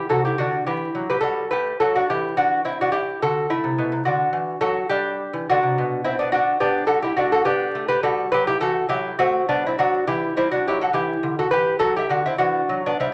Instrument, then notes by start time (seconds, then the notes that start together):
lute
0.09 C3 F#4 A4
0.25 E4 G4
0.38 D3 D4 F#4
0.66 E3 E4 G4
0.95 F#3
1.10 G4 B4
1.21 G3 F#4 A4
1.51 A3 G4 B4
1.80 F#3 F#4 A4
1.95 D4 F#4
2.10 E3 E4 G4
2.37 D4 F#4
2.65 C4 E4
2.81 D4 F#4
2.92 E4 G4
3.22 D3 F#4 A4
3.50 A3 E4
3.64 C3
3.78 B2
3.92 C3
4.05 D3 D4 F#4
4.33 E3
4.61 F#3 F#4 A4
4.89 G3 D4 G4
5.33 E3
5.50 D3 D4 F#4
5.63 C3
5.78 B2
6.04 C4 E4
6.19 B3 D4
6.32 D4 F#4
6.60 B3 D4 G4
6.87 G3 F#4 A4
7.02 E4 G4
7.17 A3 D4 F#4
7.32 F#4 A4
7.45 B3 D4 G4
7.75 A3
7.88 G4 B4
8.03 G3 F#4 A4
8.32 F#3 G4 B4
8.47 E4 G4
8.60 E3 F#4 A4
8.89 F#3 E4 G4
9.19 A3 C4 F#4
9.49 G3 B3 D4
9.66 C4 E4
9.78 F#3 D4 F#4
10.07 E3 E4 G4
10.37 G3 C4 E4
10.51 D4 F#4
10.67 F#3 E4 G4
10.81 F#4 A4
10.93 E3 E4 G4
11.23 D3
11.39 F#4 A4
11.51 E3 G4 B4
11.79 F#3 F#4 A4
11.96 E4 G4
12.09 D3 D4 F#4
12.26 C4 E4
12.38 E3 D4 F#4
12.69 F#3
12.86 B3 D4
13.00 G3 C4 E4